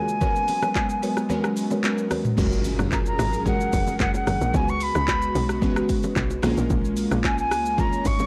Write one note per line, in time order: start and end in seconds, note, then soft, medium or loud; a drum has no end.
0.00 0.18 C#3 medium
0.00 0.21 G#3 medium
0.00 2.34 G#3 medium
0.00 0.19 A#3 medium
0.00 0.23 A#3 medium
0.00 0.22 C#4 medium
0.00 0.24 F4 medium
0.00 0.22 F#4 medium
0.00 0.15 G#4 medium
0.00 0.23 A#4 medium
0.00 1.80 G#5 loud
0.09 shaker medium
0.21 2.36 F#3 medium
0.21 1.08 G#3 medium
0.21 0.59 G#3 medium
0.21 1.08 B3 medium
0.21 2.36 B3 medium
0.21 1.08 C#4 medium
0.21 0.59 F#4 medium
0.21 1.09 F#4 medium
0.21 0.59 A#4 medium
0.21 1.09 A#4 medium
0.21 0.59 B4 medium
0.21 0.59 C#5 loud
0.21 kick loud
0.21 low conga medium
0.21 shaker medium
0.36 shaker medium
0.48 open hi-hat medium
0.48 low bongo medium
0.48 shaker medium
0.62 0.71 G#3 medium
0.62 0.71 F#4 medium
0.62 0.71 A#4 medium
0.62 0.71 B4 medium
0.62 0.71 C#5 medium
0.62 cross-stick medium
0.62 low bongo medium
0.62 shaker medium
0.75 kick medium
0.75 clap medium
0.75 high bongo medium
0.75 shaker medium
0.90 shaker medium
1.02 1.12 G#3 medium
1.02 1.12 F#4 medium
1.02 1.12 A#4 medium
1.02 1.12 B4 medium
1.02 1.12 C#5 medium
1.02 open hi-hat soft
1.02 shaker medium
1.17 cross-stick medium
1.17 high bongo soft
1.17 shaker medium
1.29 1.73 G#3 medium
1.29 1.39 G#3 medium
1.29 1.73 B3 medium
1.29 1.74 C#4 medium
1.29 1.39 F#4 medium
1.29 1.74 F#4 medium
1.29 1.39 A#4 medium
1.29 1.74 A#4 medium
1.29 1.39 B4 medium
1.29 1.39 C#5 loud
1.29 low conga medium
1.29 shaker medium
1.44 cross-stick loud
1.44 shaker medium
1.57 open hi-hat medium
1.57 shaker loud
1.71 1.79 G#3 medium
1.71 1.79 F#4 medium
1.71 1.79 A#4 medium
1.71 1.79 B4 medium
1.71 1.79 C#5 medium
1.71 low bongo medium
1.71 shaker medium
1.83 2.27 G#3 medium
1.83 2.27 B3 medium
1.83 2.28 C#4 medium
1.83 2.28 F#4 medium
1.83 2.28 A#4 medium
1.83 clap medium
1.83 high bongo medium
1.83 shaker medium
1.98 shaker medium
2.11 2.20 G#3 medium
2.11 2.20 F#4 medium
2.11 2.20 A#4 medium
2.11 2.20 B4 medium
2.11 2.20 C#5 medium
2.11 cross-stick medium
2.11 open hi-hat soft
2.11 low bongo medium
2.11 low conga medium
2.11 shaker medium
2.25 mid tom medium
2.25 shaker medium
2.37 2.75 F#1 loud
2.37 4.52 F#3 medium
2.37 3.24 G#3 medium
2.37 3.24 C#4 medium
2.37 4.52 C#4 medium
2.37 3.25 F4 medium
2.37 3.25 F#4 medium
2.37 4.52 G#4 medium
2.37 4.52 A#4 medium
2.37 3.25 A#4 medium
2.37 kick loud
2.37 crash loud
2.37 impact medium
2.37 low conga medium
2.37 shaker medium
2.52 shaker medium
2.64 open hi-hat medium
2.64 shaker medium
2.79 3.15 F#1 loud
2.79 cross-stick loud
2.79 shaker medium
2.92 2.99 A#5 medium
2.92 kick medium
2.92 clap medium
2.92 high bongo medium
2.92 shaker medium
3.06 3.44 A#5 loud
3.06 shaker medium
3.19 3.67 G#1 loud
3.19 cross-stick loud
3.19 open hi-hat medium
3.19 shaker medium
3.33 shaker medium
3.45 4.32 G#3 medium
3.45 4.32 C#4 medium
3.45 4.33 F#4 medium
3.45 4.33 G#4 medium
3.45 4.33 A#4 medium
3.45 3.97 F#5 medium
3.45 kick loud
3.45 low conga medium
3.45 shaker medium
3.60 shaker medium
3.73 3.97 F1 loud
3.73 kick loud
3.73 open hi-hat medium
3.73 shaker loud
3.87 low bongo medium
3.87 shaker medium
4.00 4.24 F#1 loud
4.00 4.14 F#5 medium
4.00 kick loud
4.00 clap medium
4.00 high bongo medium
4.00 shaker medium
4.14 4.57 F#5 loud
4.14 high bongo medium
4.14 shaker medium
4.27 4.40 F#1 medium
4.27 cross-stick medium
4.27 open hi-hat medium
4.27 low bongo medium
4.27 low conga medium
4.27 shaker medium
4.41 4.53 A#1 loud
4.41 shaker medium
4.53 4.91 C#2 loud
4.53 6.41 C#3 medium
4.53 5.40 G#3 medium
4.53 8.27 G#3 medium
4.53 5.41 B3 medium
4.53 6.41 B3 medium
4.53 5.41 C#4 medium
4.53 6.41 F#4 medium
4.53 5.41 F#4 medium
4.53 5.42 B4 medium
4.53 4.71 G#5 loud
4.53 kick loud
4.53 low conga medium
4.53 shaker medium
4.68 4.84 C#6 loud
4.68 shaker medium
4.80 5.63 B5 loud
4.80 open hi-hat medium
4.80 shaker loud
4.95 5.31 C#2 loud
4.95 cross-stick medium
4.95 shaker medium
5.08 kick medium
5.08 clap medium
5.08 high bongo medium
5.08 shaker medium
5.22 shaker medium
5.35 5.83 B1 loud
5.35 open hi-hat medium
5.35 shaker medium
5.49 cross-stick medium
5.49 shaker medium
5.61 6.41 G#3 medium
5.61 6.43 B3 medium
5.61 6.42 C#4 medium
5.61 6.44 F#4 medium
5.61 6.44 B4 loud
5.61 kick loud
5.61 low conga medium
5.61 shaker medium
5.76 cross-stick loud
5.76 shaker soft
5.89 kick loud
5.89 open hi-hat medium
5.89 shaker loud
6.03 low bongo medium
6.03 shaker medium
6.16 6.40 B1 medium
6.16 kick loud
6.16 clap medium
6.16 high bongo medium
6.16 shaker medium
6.30 high bongo medium
6.30 shaker medium
6.42 6.56 A#1 loud
6.42 7.29 G#3 loud
6.42 7.30 A#3 medium
6.42 8.27 A#3 medium
6.42 7.30 C#4 loud
6.42 8.27 C#4 medium
6.42 7.30 F4 loud
6.42 6.51 G#4 medium
6.42 cross-stick loud
6.42 open hi-hat medium
6.42 low bongo medium
6.42 low conga medium
6.42 shaker medium
6.51 7.34 A#4 loud
6.57 6.69 A#1 medium
6.57 shaker medium
6.70 7.07 A#1 loud
6.70 kick loud
6.70 low conga medium
6.70 shaker medium
6.85 shaker medium
6.97 open hi-hat medium
6.97 shaker loud
7.11 7.53 A#1 loud
7.11 cross-stick medium
7.11 shaker medium
7.24 7.38 G#5 loud
7.24 kick medium
7.24 clap medium
7.24 high bongo medium
7.24 shaker medium
7.38 7.81 G#5 loud
7.38 shaker medium
7.51 8.00 C#2 loud
7.51 cross-stick loud
7.51 open hi-hat soft
7.51 shaker medium
7.66 shaker medium
7.77 8.27 G#3 medium
7.77 8.27 A#3 medium
7.77 8.27 C#4 medium
7.77 8.27 F4 medium
7.77 8.27 C#5 medium
7.77 8.08 A#5 loud
7.77 kick loud
7.77 low conga medium
7.77 shaker medium
7.93 shaker medium
8.05 8.27 G#1 medium
8.05 8.27 C#6 loud
8.05 kick loud
8.05 open hi-hat medium
8.05 shaker loud
8.19 low bongo medium
8.19 shaker medium